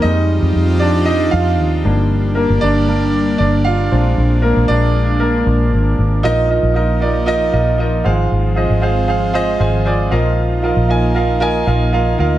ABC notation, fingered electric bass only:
X:1
M:4/4
L:1/16
Q:1/4=116
K:Bbmix
V:1 name="Fingered electric bass" clef=bass
F,,3 F,, F,,6 F,,2 E,,2 G,,,2- | G,,,3 G,,, G,,,6 G,,,4 B,,,2 | B,,,3 B,,, B,,,6 B,,,2 A,,,2 A,,,2 | B,,,3 B,,,6- B,,, B,,,4 A,,,2 |
A,,,3 A,,,6- A,,, A,,,4 B,,,2- | B,,,3 B,,,6- B,,, B,,,4 D,,2 |]